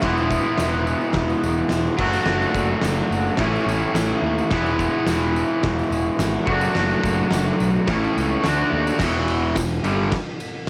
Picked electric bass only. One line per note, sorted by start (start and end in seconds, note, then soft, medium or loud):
0.02 0.37 E1 medium
0.58 0.93 E1 medium
1.14 1.32 E1 medium
1.43 1.61 E1 loud
1.71 1.88 E1 medium
1.99 2.16 F#1 loud
2.26 2.43 F#1 loud
2.55 2.72 F#1 medium
2.83 3.00 F#1 medium
3.10 3.28 F#1 medium
3.39 3.56 A1 medium
3.66 3.84 A1 loud
3.94 4.12 A1 medium
4.22 4.40 D#2 medium
4.52 4.86 E1 loud
5.06 5.41 E1 medium
5.64 5.81 E1 loud
5.90 6.08 E1 loud
6.18 6.36 G#1 loud
6.48 6.65 F#1 loud
6.76 6.93 F#1 loud
7.03 7.21 F#1 medium
7.32 7.49 F#1 medium
7.60 7.77 B1 medium
7.88 8.05 A1 loud
8.17 8.34 C#2 loud
8.44 8.62 D2 medium
8.72 8.89 D#2 medium
9.00 9.52 E1 medium
9.56 9.82 E1 medium
9.83 10.10 G1 medium